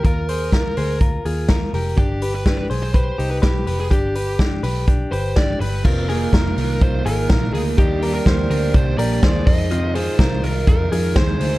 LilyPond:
<<
  \new Staff \with { instrumentName = "Lead electric guitar" } { \time 4/4 \key f \dorian \tempo 4 = 124 bes'2 r2 | g'8. b'8 b'8 c''16 c''8. b'16 g'8. aes'16 | g'4 r4. c''8 d''8 b'8 | bes'8 bes'4. c''8 bes'4 aes'8 |
g'8. bes'8. bes'8 c''8 d''4 ees''8~ | ees''8 c''4 bes'8 bes'4 c''4 | }
  \new Staff \with { instrumentName = "Clean electric guitar" } { \time 4/4 \key f \dorian <f' bes'>8 <aes' c''>8 <f' bes'>8 <aes' c''>8 <f' bes'>8 <f' aes'>8 <f' bes'>8 <g' bes'>8 | <d' g'>8 <g' b'>8 <d' g'>8 <aes' c''>8 <g' b'>8 <ees' g'>8 <g' b'>8 <g' b'>8 | <d' g'>8 <g' b'>8 <d' g'>8 <g' b'>8 <d' g'>8 <g' b'>8 <d' g'>8 <g' b'>8 | <c' f'>8 <f' aes'>8 <f' bes'>4. <f' aes'>8 <f' bes'>4 |
<ees' g'>8 <g' bes'>8 <g' c''>4. <g' bes'>8 <aes' c''>4 | <c' f'>8 <f' aes'>8 <f' bes'>4. <f' aes'>8 <aes' c''>4 | }
  \new Staff \with { instrumentName = "Overdriven electric guitar" } { \clef bass \time 4/4 \key f \dorian r1 | r1 | r1 | <f, c ees bes ees'>8 <ees bes ees'>8 <c ees bes ees'>8 <ees bes ees'>8 <f, c ees bes ees'>8 <ees bes ees'>8 <c ees bes ees'>8 <ees bes ees'>8 |
<ees g bes d'>8 <g bes d'>8 <ees g bes d'>8 <g bes d'>8 <ees g bes d'>8 <g bes d'>8 <ees g bes d'>8 <ees aes ees'>8 | <f, c ees aes ees'>8 <ees aes ees'>8 <c ees aes ees'>8 <ees aes ees'>8 <f, c ees aes ees'>8 <ees aes ees'>8 <c ees aes ees'>8 <ees aes ees'>8 | }
  \new Staff \with { instrumentName = "Picked electric bass" } { \clef bass \time 4/4 \key f \dorian ees,4. d,4 ees,4 f,,8 | g,,4. b,,4 c,8 b,,8 f,,8 | g,,4. b,,4 g,,4 g,,8 | f,,4 f,,8 c,8 c,8 aes,,8 bes,,8 d,8 |
ees,4 ees,8 d,8 c,8 bes,,8 ees,8 f,8~ | f,4 c,8 c,8 f,8 f,8 ees,8 d,8 | }
  \new DrumStaff \with { instrumentName = "Drums" } \drummode { \time 4/4 <hh bd>8 hho8 <hh bd sn>8 hho8 <hh bd>8 hho8 <hh bd sn>8 hho8 | <hh bd>8 hho8 <hh bd sn>8 hho8 <hh bd>8 hho8 <hh bd sn>8 hho8 | <hh bd>8 hho8 <hh bd sn>8 hho8 <hh bd>8 hho8 <hh bd sn>8 hho8 | <cymc bd>8 hho8 <hh bd sn>8 hho8 <hh bd>8 hho8 <hh bd sn>8 hho8 |
<hh bd>8 hho8 <hh bd sn>8 hho8 <hh bd>8 hho8 <hh bd sn>8 <hho bd>8 | hh8 hho8 <hh bd sn>8 hho8 <hh bd>8 hho8 <hh bd sn>8 hho8 | }
>>